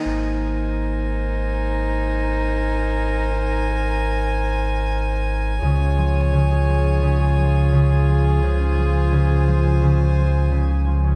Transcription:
Already playing: D#3 A#3 D#4 G4
0.05 G#1 D#4 A#4 C5 G#5
5.62 C#2 C#3 F4 G#4 C#5
5.79 C#4
5.98 F3
6.33 C#3
6.51 G#4
6.68 F3
6.85 C#4
7.02 C#3
7.20 C#4
7.38 F3
7.72 C#3
7.90 G#4
8.08 F3
8.25 C#4
8.42 C#3 C5
8.59 C#4
8.77 F3
9.12 C#3
9.29 G#4
9.47 F3
9.64 C#4
9.82 C#3
10.00 C#4
10.18 F3
10.52 C#3
10.69 G#4
10.86 F3
11.04 C#4

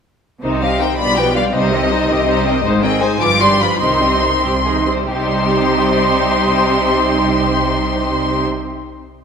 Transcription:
0.43 C2 C3 D#3 D#4 C5
0.61 G3 C4 G4 D#5 F5
0.79 D#3 D#4 C5 G5
0.97 B1 B2 G3 D4 F4 D5 B5
1.16 F3 B3 G4 B4 G5
1.35 G3 D4 F4 D5 F5
1.53 C2 C3 G3 D#4 C5 D#5
1.72 D#3 C4 G4 D#5
1.91 G3 D#4 C5
2.09 C2 C3 D#3 C4 G4 D#5
2.28 G3 D#4 C5
2.46 D#3 C4 G4 D#5
2.64 G#1 G#2 G#3 D#4 C5
2.82 D#3 C4 G#4 D#5 G5
3.02 G#3 D#4 C5 G#5
3.21 G1 G2 F3 F4 B4 D6
3.41 G3 D4 G4 D5 C6
3.61 F3 F4 B4 B5
3.81 C2 C3 D#3 D#4 C5 C6
4.01 G3 C4 G4 D#5
4.22 D#3 D#4 C5
4.44 C2 C3 G3 C4 G4
4.65 D#3 D#4 G#4
4.87 G3 C4 C5
5.10 C2 C3 G3 D#4 G4 C5 C6

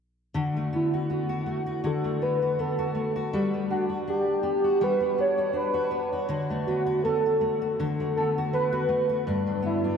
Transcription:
0.34 D3 F#4
0.57 A3
0.73 B3 E4
0.94 F#4
1.10 B3 F#4
1.29 F#4
1.46 A3
1.66 F#4
1.84 D3 F#4 A4
2.04 A3
2.22 B3 B4
2.42 F#4
2.59 B3 A4
2.79 F#4
2.95 A3
3.16 F#4
3.33 G3 F#4
3.54 B3
3.70 D4 F#4
3.89 F#4
4.08 D4 G4
4.43 B3
4.64 F#4
4.81 G3 F#4 B4
5.00 B3
5.18 D4 C#5
5.38 F#4
5.53 D4 B4
5.74 F#4
5.91 B3
6.13 F#4
6.29 D3 F#4
6.50 A3
6.67 B3 F#4
6.86 F#4
7.04 B3 A4
7.26 F#4
7.41 A3
7.62 F#4
7.80 D3 F#4
8.00 A3
8.16 B3 A4
8.38 F#4
8.53 B3 B4
8.72 F#4
8.89 A3
9.09 F#4
9.27 G2 D4
9.47 F#3
9.62 B3 E4
9.84 D4

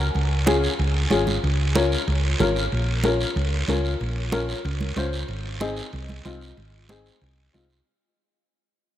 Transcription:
Already playing: A#5
0.15 C#2, high conga, long guiro
0.46 C#4 F4 G#4, high conga, short guiro
0.64 short guiro
0.79 C#2, high conga, long guiro
1.10 G#1 C#4 F4 G#4, high conga, short guiro
1.27 high conga, short guiro
1.43 C#2, high conga, long guiro
1.75 C#4 F4 A#4, high conga, short guiro
1.92 short guiro
2.08 C#2, high conga, long guiro
2.39 G#1 C#4 F4 A#4, high conga, low conga, short guiro
2.56 short guiro
2.72 A#1, high conga, long guiro
3.04 C#4 F4 A#4, high conga, short guiro
3.21 short guiro
3.36 C#2, high conga, long guiro
3.68 C#2 C#4 F4 A#4, high conga, short guiro
3.85 short guiro
4.01 A#1, high conga, long guiro
4.32 C#4 F4 A#4, high conga, short guiro
4.49 short guiro
4.65 C#2, high conga, long guiro
4.81 high conga
4.96 C#2 C#4 F4 C5, high conga, short guiro
5.13 short guiro
5.28 G#1, high conga, long guiro
5.60 C4 D#4 G#4, high conga, short guiro
5.77 short guiro
5.93 C2, high conga, long guiro
6.09 high conga
6.25 C2 C4 D#4 F4, high conga, short guiro
6.41 short guiro
6.57 G#1, high conga, long guiro
6.89 C4 D#4 G#4, high conga, short guiro
7.06 short guiro
7.22 C2, high conga, long guiro
7.53 C2 C4 D#4 F4, high conga, short guiro
7.70 short guiro

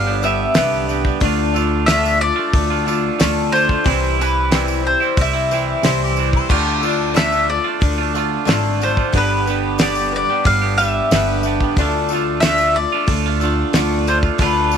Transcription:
Already playing: G1 G3 D4 G4 B4 F5
0.07 G3 B3 D4 G4
0.22 G3 B3 D4 G4 B4 E5, tambourine
0.54 C2 G2 D3 G3 B3 D4 G4 B4, snare, open hi-hat, tambourine
0.73 tambourine
0.88 G3 B3 D4 G4, tambourine
1.04 G3 B3 D4 G4, kick, tambourine
1.20 D2 D3 A3 D4 A4, kick, open hi-hat
1.25 F4
1.53 D3 A3 D4 F4 A4, tambourine
1.86 D3 A3 D4 F4 E5, snare, open hi-hat, tambourine
1.91 A4
2.03 A3 D4 F4, tambourine
2.20 D4 F4 A4 D5, muted clean electric guitar stroke
2.36 A3 D4 F4
2.53 D2 A3 D4 F4 A4, kick, open hi-hat
2.70 A3 D4 F4
2.85 D3 A3 D4 F4 A4, tambourine
3.19 D2 D3 A3 D4 F4 A4, snare, open hi-hat, tambourine
3.52 D3 A3 D4 F4 C5, tambourine
3.69 A3 D4 F4, kick, tambourine
3.84 C2 C3 E3 G3 C4 E4 C5, kick, open hi-hat, tambourine
4.04 tambourine
4.18 E3 G3 C4 E4 B4, tambourine
4.22 E4
4.51 C3 E3 G3 C4 E4, snare, open hi-hat, tambourine
4.67 G3 C4 E4, tambourine
4.84 G3 C4 E4 C5, muted clean electric guitar stroke
5.00 G3 C4 E4, tambourine
5.17 C2 G3 C4 E4 C5, kick, open hi-hat, tambourine
5.21 E5
5.33 G3 C4 E4, tambourine
5.51 E3 G3 C4 E4 C5, tambourine
5.83 C2 C3 E3 G3 C4 E4 C5, snare, open hi-hat, tambourine
6.03 G4
6.16 E3 G3 C4 D4 E4, tambourine
6.31 G3 C4 E4, kick, tambourine
6.36 C5
6.48 D2 D3 A3 D4 F4 G4 A4, kick, crash
6.81 D3 A3 D4 A4, tambourine
6.85 D4 F4
7.14 D3 A3 D4 F4 A4 E5, snare, open hi-hat, tambourine
7.32 A3 D4 F4, tambourine
7.48 D4 F4 A4 D5, muted clean electric guitar stroke
7.64 A3 D4 F4
7.80 D2 A3 D4 F4 A4, kick, open hi-hat
7.98 A3 D4 F4
8.13 D3 A3 A4, tambourine
8.17 D4 F4
8.46 G#1 D3 A3 D4 A4, snare, open hi-hat, tambourine
8.51 F4
8.65 tambourine
8.81 D3 A3 D4 F4 C5, tambourine
8.97 A3 D4 F4, kick, tambourine
9.14 G1 G2 D3 G3 B3 D4 G4 B4, kick, open hi-hat
9.46 G3 B3 D4 G4 B4, tambourine
9.79 G2 D3 G3 B3 G4 B4 D5, snare, open hi-hat, tambourine
9.83 D4 G4
9.95 D4 G4, tambourine
9.99 G3 B3
10.12 D4 G4 B4, muted clean electric guitar stroke
10.16 D5
10.30 G3 B3 D4 G4
10.44 G1 G3 D4 G4 B4 F5, kick, open hi-hat
10.61 G3 B3 D4 G4
10.78 G3 B3 D4 G4 B4 E5, tambourine
11.11 G1 G2 D3 G3 B3 D4 G4 B4, snare, open hi-hat, tambourine
11.28 tambourine
11.43 G3 B3 D4, tambourine
11.47 G4
11.60 G3 B3 D4 G4, kick, tambourine
11.76 D2 D3 A3 D4 A4, kick, open hi-hat
11.81 F4
12.09 D3 A4, tambourine
12.13 A3 D4 F4
12.40 D3 A3 E5, snare, open hi-hat, tambourine
12.45 D4 F4 A4
12.58 D4 F4, tambourine
12.63 A3
12.74 D4 F4 A4 D5, muted clean electric guitar stroke
12.92 A3 D4 F4
13.07 D2 A3 D4 F4 A4, kick, open hi-hat
13.26 A3 D4 F4
13.40 D3 A3 A4, tambourine
13.44 D4 F4
13.73 D2 D3 A3 A4, snare, open hi-hat, tambourine
13.78 D4 F4
13.92 tambourine
14.07 D3 A3 D4 F4 C5, tambourine
14.23 D4 F4, kick, tambourine
14.27 A3
14.38 D2 D3 A3 D4 F4 A4 B4, kick, open hi-hat, tambourine
14.56 tambourine
14.72 D3 A3 F4 A4, tambourine

